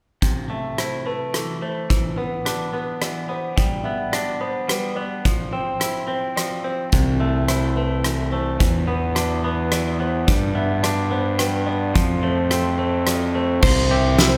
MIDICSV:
0, 0, Header, 1, 6, 480
1, 0, Start_track
1, 0, Tempo, 558659
1, 186, Time_signature, 3, 2, 24, 8
1, 12348, End_track
2, 0, Start_track
2, 0, Title_t, "Electric slide guitar"
2, 0, Program_c, 0, 29
2, 11709, Note_on_c, 0, 72, 72
2, 12348, Note_off_c, 0, 72, 0
2, 12348, End_track
3, 0, Start_track
3, 0, Title_t, "Felt piano"
3, 0, Program_c, 1, 0
3, 433, Note_on_c, 1, 76, 43
3, 670, Note_off_c, 1, 76, 0
3, 670, Note_on_c, 1, 72, 44
3, 909, Note_off_c, 1, 72, 0
3, 912, Note_on_c, 1, 71, 49
3, 1147, Note_on_c, 1, 69, 45
3, 1150, Note_off_c, 1, 71, 0
3, 1387, Note_off_c, 1, 69, 0
3, 1390, Note_on_c, 1, 72, 45
3, 1866, Note_on_c, 1, 71, 48
3, 1869, Note_off_c, 1, 72, 0
3, 2339, Note_off_c, 1, 71, 0
3, 2352, Note_on_c, 1, 71, 45
3, 2589, Note_on_c, 1, 74, 50
3, 2590, Note_off_c, 1, 71, 0
3, 2829, Note_off_c, 1, 74, 0
3, 2831, Note_on_c, 1, 72, 46
3, 3070, Note_off_c, 1, 72, 0
3, 3299, Note_on_c, 1, 76, 50
3, 3543, Note_on_c, 1, 74, 51
3, 3544, Note_off_c, 1, 76, 0
3, 3786, Note_off_c, 1, 74, 0
3, 3789, Note_on_c, 1, 72, 54
3, 4026, Note_on_c, 1, 71, 49
3, 4029, Note_off_c, 1, 72, 0
3, 4256, Note_on_c, 1, 74, 48
3, 4268, Note_off_c, 1, 71, 0
3, 4744, Note_off_c, 1, 74, 0
3, 4745, Note_on_c, 1, 72, 49
3, 5213, Note_off_c, 1, 72, 0
3, 5226, Note_on_c, 1, 72, 47
3, 5468, Note_on_c, 1, 74, 45
3, 5469, Note_off_c, 1, 72, 0
3, 5710, Note_off_c, 1, 74, 0
3, 5710, Note_on_c, 1, 72, 45
3, 5951, Note_off_c, 1, 72, 0
3, 6188, Note_on_c, 1, 76, 47
3, 6430, Note_off_c, 1, 76, 0
3, 6430, Note_on_c, 1, 72, 51
3, 6667, Note_on_c, 1, 71, 46
3, 6671, Note_off_c, 1, 72, 0
3, 6910, Note_off_c, 1, 71, 0
3, 6910, Note_on_c, 1, 69, 47
3, 7147, Note_on_c, 1, 72, 49
3, 7151, Note_off_c, 1, 69, 0
3, 7630, Note_off_c, 1, 72, 0
3, 7631, Note_on_c, 1, 71, 51
3, 8092, Note_off_c, 1, 71, 0
3, 8105, Note_on_c, 1, 71, 50
3, 8347, Note_on_c, 1, 74, 49
3, 8349, Note_off_c, 1, 71, 0
3, 8590, Note_off_c, 1, 74, 0
3, 8591, Note_on_c, 1, 72, 48
3, 8832, Note_off_c, 1, 72, 0
3, 9065, Note_on_c, 1, 76, 54
3, 9305, Note_on_c, 1, 74, 52
3, 9309, Note_off_c, 1, 76, 0
3, 9549, Note_off_c, 1, 74, 0
3, 9549, Note_on_c, 1, 72, 53
3, 9783, Note_on_c, 1, 71, 53
3, 9791, Note_off_c, 1, 72, 0
3, 10021, Note_on_c, 1, 74, 51
3, 10028, Note_off_c, 1, 71, 0
3, 10504, Note_on_c, 1, 72, 54
3, 10507, Note_off_c, 1, 74, 0
3, 10971, Note_off_c, 1, 72, 0
3, 10984, Note_on_c, 1, 72, 55
3, 11228, Note_off_c, 1, 72, 0
3, 11232, Note_on_c, 1, 74, 51
3, 11472, Note_off_c, 1, 74, 0
3, 11474, Note_on_c, 1, 72, 54
3, 11713, Note_off_c, 1, 72, 0
3, 11954, Note_on_c, 1, 76, 62
3, 12192, Note_off_c, 1, 76, 0
3, 12196, Note_on_c, 1, 72, 60
3, 12348, Note_off_c, 1, 72, 0
3, 12348, End_track
4, 0, Start_track
4, 0, Title_t, "Clean electric guitar"
4, 0, Program_c, 2, 27
4, 192, Note_on_c, 2, 48, 39
4, 428, Note_on_c, 2, 57, 42
4, 674, Note_on_c, 2, 64, 37
4, 903, Note_off_c, 2, 57, 0
4, 914, Note_on_c, 2, 57, 42
4, 1151, Note_on_c, 2, 52, 41
4, 1383, Note_off_c, 2, 57, 0
4, 1390, Note_off_c, 2, 48, 0
4, 1394, Note_on_c, 2, 57, 39
4, 1619, Note_off_c, 2, 52, 0
4, 1629, Note_on_c, 2, 52, 41
4, 1631, Note_off_c, 2, 57, 0
4, 1631, Note_off_c, 2, 64, 0
4, 1870, Note_on_c, 2, 59, 48
4, 2109, Note_on_c, 2, 62, 39
4, 2338, Note_off_c, 2, 59, 0
4, 2348, Note_on_c, 2, 59, 45
4, 2579, Note_off_c, 2, 52, 0
4, 2590, Note_on_c, 2, 52, 40
4, 2816, Note_off_c, 2, 59, 0
4, 2827, Note_on_c, 2, 59, 44
4, 3060, Note_off_c, 2, 52, 0
4, 3063, Note_on_c, 2, 55, 45
4, 3068, Note_off_c, 2, 59, 0
4, 3069, Note_off_c, 2, 62, 0
4, 3312, Note_on_c, 2, 59, 46
4, 3546, Note_on_c, 2, 62, 44
4, 3777, Note_off_c, 2, 59, 0
4, 3788, Note_on_c, 2, 59, 45
4, 4011, Note_off_c, 2, 55, 0
4, 4021, Note_on_c, 2, 55, 43
4, 4257, Note_off_c, 2, 59, 0
4, 4267, Note_on_c, 2, 59, 42
4, 4506, Note_off_c, 2, 55, 0
4, 4509, Note_off_c, 2, 59, 0
4, 4509, Note_off_c, 2, 62, 0
4, 4511, Note_on_c, 2, 53, 46
4, 4750, Note_on_c, 2, 60, 49
4, 4984, Note_on_c, 2, 64, 41
4, 5210, Note_off_c, 2, 60, 0
4, 5220, Note_on_c, 2, 60, 45
4, 5455, Note_off_c, 2, 53, 0
4, 5465, Note_on_c, 2, 53, 39
4, 5697, Note_off_c, 2, 60, 0
4, 5707, Note_on_c, 2, 60, 39
4, 5949, Note_off_c, 2, 53, 0
4, 5950, Note_off_c, 2, 60, 0
4, 5955, Note_on_c, 2, 48, 43
4, 6189, Note_on_c, 2, 57, 46
4, 6428, Note_off_c, 2, 64, 0
4, 6431, Note_on_c, 2, 64, 40
4, 6665, Note_off_c, 2, 57, 0
4, 6675, Note_on_c, 2, 57, 45
4, 6913, Note_on_c, 2, 52, 40
4, 7143, Note_off_c, 2, 57, 0
4, 7153, Note_on_c, 2, 57, 42
4, 7154, Note_off_c, 2, 48, 0
4, 7373, Note_off_c, 2, 52, 0
4, 7383, Note_on_c, 2, 52, 44
4, 7392, Note_off_c, 2, 64, 0
4, 7393, Note_off_c, 2, 57, 0
4, 7626, Note_on_c, 2, 59, 50
4, 7863, Note_on_c, 2, 62, 44
4, 8102, Note_off_c, 2, 59, 0
4, 8112, Note_on_c, 2, 59, 50
4, 8346, Note_off_c, 2, 52, 0
4, 8356, Note_on_c, 2, 52, 42
4, 8582, Note_off_c, 2, 59, 0
4, 8592, Note_on_c, 2, 59, 46
4, 8824, Note_off_c, 2, 52, 0
4, 8827, Note_on_c, 2, 55, 48
4, 8828, Note_off_c, 2, 62, 0
4, 8833, Note_off_c, 2, 59, 0
4, 9066, Note_on_c, 2, 59, 53
4, 9306, Note_on_c, 2, 62, 46
4, 9536, Note_off_c, 2, 59, 0
4, 9546, Note_on_c, 2, 59, 49
4, 9772, Note_off_c, 2, 55, 0
4, 9783, Note_on_c, 2, 55, 48
4, 10012, Note_off_c, 2, 59, 0
4, 10022, Note_on_c, 2, 59, 47
4, 10258, Note_off_c, 2, 55, 0
4, 10261, Note_on_c, 2, 53, 48
4, 10268, Note_off_c, 2, 59, 0
4, 10269, Note_off_c, 2, 62, 0
4, 10506, Note_on_c, 2, 57, 53
4, 10744, Note_on_c, 2, 60, 49
4, 10975, Note_off_c, 2, 57, 0
4, 10985, Note_on_c, 2, 57, 47
4, 11215, Note_off_c, 2, 53, 0
4, 11225, Note_on_c, 2, 53, 43
4, 11460, Note_off_c, 2, 57, 0
4, 11470, Note_on_c, 2, 57, 47
4, 11707, Note_off_c, 2, 60, 0
4, 11708, Note_off_c, 2, 53, 0
4, 11709, Note_on_c, 2, 48, 51
4, 11711, Note_off_c, 2, 57, 0
4, 11951, Note_on_c, 2, 67, 63
4, 12187, Note_on_c, 2, 64, 54
4, 12348, Note_off_c, 2, 48, 0
4, 12348, Note_off_c, 2, 64, 0
4, 12348, Note_off_c, 2, 67, 0
4, 12348, End_track
5, 0, Start_track
5, 0, Title_t, "Fingered electric bass"
5, 0, Program_c, 3, 33
5, 5950, Note_on_c, 3, 36, 49
5, 7363, Note_off_c, 3, 36, 0
5, 7392, Note_on_c, 3, 40, 56
5, 8804, Note_off_c, 3, 40, 0
5, 8833, Note_on_c, 3, 43, 56
5, 10244, Note_off_c, 3, 43, 0
5, 10271, Note_on_c, 3, 41, 60
5, 11682, Note_off_c, 3, 41, 0
5, 11706, Note_on_c, 3, 36, 74
5, 12348, Note_off_c, 3, 36, 0
5, 12348, End_track
6, 0, Start_track
6, 0, Title_t, "Drums"
6, 191, Note_on_c, 9, 36, 64
6, 191, Note_on_c, 9, 42, 35
6, 277, Note_off_c, 9, 36, 0
6, 277, Note_off_c, 9, 42, 0
6, 673, Note_on_c, 9, 37, 57
6, 673, Note_on_c, 9, 42, 41
6, 759, Note_off_c, 9, 37, 0
6, 759, Note_off_c, 9, 42, 0
6, 1153, Note_on_c, 9, 37, 56
6, 1153, Note_on_c, 9, 42, 42
6, 1239, Note_off_c, 9, 37, 0
6, 1239, Note_off_c, 9, 42, 0
6, 1635, Note_on_c, 9, 36, 72
6, 1637, Note_on_c, 9, 42, 40
6, 1720, Note_off_c, 9, 36, 0
6, 1723, Note_off_c, 9, 42, 0
6, 2116, Note_on_c, 9, 37, 56
6, 2116, Note_on_c, 9, 42, 38
6, 2202, Note_off_c, 9, 37, 0
6, 2202, Note_off_c, 9, 42, 0
6, 2591, Note_on_c, 9, 37, 56
6, 2591, Note_on_c, 9, 42, 40
6, 2677, Note_off_c, 9, 37, 0
6, 2677, Note_off_c, 9, 42, 0
6, 3072, Note_on_c, 9, 36, 67
6, 3072, Note_on_c, 9, 42, 38
6, 3158, Note_off_c, 9, 36, 0
6, 3158, Note_off_c, 9, 42, 0
6, 3549, Note_on_c, 9, 37, 56
6, 3549, Note_on_c, 9, 42, 38
6, 3635, Note_off_c, 9, 37, 0
6, 3635, Note_off_c, 9, 42, 0
6, 4033, Note_on_c, 9, 37, 61
6, 4033, Note_on_c, 9, 42, 42
6, 4119, Note_off_c, 9, 37, 0
6, 4119, Note_off_c, 9, 42, 0
6, 4513, Note_on_c, 9, 36, 67
6, 4514, Note_on_c, 9, 42, 38
6, 4599, Note_off_c, 9, 36, 0
6, 4600, Note_off_c, 9, 42, 0
6, 4991, Note_on_c, 9, 37, 55
6, 4991, Note_on_c, 9, 42, 44
6, 5077, Note_off_c, 9, 37, 0
6, 5077, Note_off_c, 9, 42, 0
6, 5477, Note_on_c, 9, 37, 55
6, 5477, Note_on_c, 9, 42, 43
6, 5563, Note_off_c, 9, 37, 0
6, 5563, Note_off_c, 9, 42, 0
6, 5947, Note_on_c, 9, 42, 45
6, 5952, Note_on_c, 9, 36, 76
6, 6033, Note_off_c, 9, 42, 0
6, 6038, Note_off_c, 9, 36, 0
6, 6431, Note_on_c, 9, 37, 56
6, 6431, Note_on_c, 9, 42, 44
6, 6517, Note_off_c, 9, 37, 0
6, 6517, Note_off_c, 9, 42, 0
6, 6912, Note_on_c, 9, 37, 56
6, 6912, Note_on_c, 9, 42, 43
6, 6998, Note_off_c, 9, 37, 0
6, 6998, Note_off_c, 9, 42, 0
6, 7392, Note_on_c, 9, 42, 42
6, 7393, Note_on_c, 9, 36, 72
6, 7478, Note_off_c, 9, 42, 0
6, 7479, Note_off_c, 9, 36, 0
6, 7870, Note_on_c, 9, 37, 61
6, 7870, Note_on_c, 9, 42, 38
6, 7956, Note_off_c, 9, 37, 0
6, 7956, Note_off_c, 9, 42, 0
6, 8349, Note_on_c, 9, 37, 61
6, 8349, Note_on_c, 9, 42, 44
6, 8435, Note_off_c, 9, 37, 0
6, 8435, Note_off_c, 9, 42, 0
6, 8832, Note_on_c, 9, 42, 41
6, 8833, Note_on_c, 9, 36, 74
6, 8918, Note_off_c, 9, 42, 0
6, 8919, Note_off_c, 9, 36, 0
6, 9312, Note_on_c, 9, 37, 59
6, 9312, Note_on_c, 9, 42, 49
6, 9398, Note_off_c, 9, 37, 0
6, 9398, Note_off_c, 9, 42, 0
6, 9787, Note_on_c, 9, 37, 61
6, 9787, Note_on_c, 9, 42, 45
6, 9872, Note_off_c, 9, 37, 0
6, 9872, Note_off_c, 9, 42, 0
6, 10271, Note_on_c, 9, 42, 47
6, 10272, Note_on_c, 9, 36, 71
6, 10357, Note_off_c, 9, 42, 0
6, 10358, Note_off_c, 9, 36, 0
6, 10748, Note_on_c, 9, 37, 60
6, 10748, Note_on_c, 9, 42, 43
6, 10834, Note_off_c, 9, 37, 0
6, 10834, Note_off_c, 9, 42, 0
6, 11226, Note_on_c, 9, 37, 63
6, 11226, Note_on_c, 9, 42, 46
6, 11312, Note_off_c, 9, 37, 0
6, 11312, Note_off_c, 9, 42, 0
6, 11706, Note_on_c, 9, 49, 92
6, 11710, Note_on_c, 9, 36, 84
6, 11792, Note_off_c, 9, 49, 0
6, 11796, Note_off_c, 9, 36, 0
6, 12188, Note_on_c, 9, 38, 74
6, 12188, Note_on_c, 9, 42, 54
6, 12274, Note_off_c, 9, 38, 0
6, 12274, Note_off_c, 9, 42, 0
6, 12348, End_track
0, 0, End_of_file